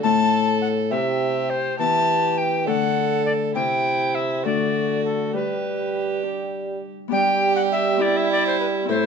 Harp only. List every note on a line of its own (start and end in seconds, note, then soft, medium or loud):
0.03 0.94 A2 medium
0.03 0.94 A3 soft
0.03 0.91 C4 soft
0.03 0.92 E4 soft
0.91 1.81 C3 medium
0.91 1.82 C4 soft
0.91 1.79 E4 soft
1.79 2.69 E3 medium
1.79 2.69 B3 soft
1.79 2.70 E4 soft
2.66 3.57 D3 soft
2.66 3.57 A3 soft
2.66 3.58 D4 soft
2.66 3.58 A4 soft
3.55 4.46 C3 medium
3.55 4.46 C4 soft
3.55 4.47 E4 soft
4.44 5.36 D3 soft
4.44 5.36 A3 soft
4.44 6.22 D4 soft
4.44 5.37 F#4 soft
5.33 7.10 G3 soft
6.23 7.08 D4 soft
6.23 7.09 G4 soft
7.08 8.91 G3 medium
7.08 8.01 B3 medium
7.08 8.02 D4 medium
7.08 7.98 G4 medium
7.97 8.84 C4 medium
7.97 8.85 E4 medium
7.97 8.91 G4 medium
8.85 9.06 A2 medium
8.85 9.06 C4 medium
8.85 9.06 E4 medium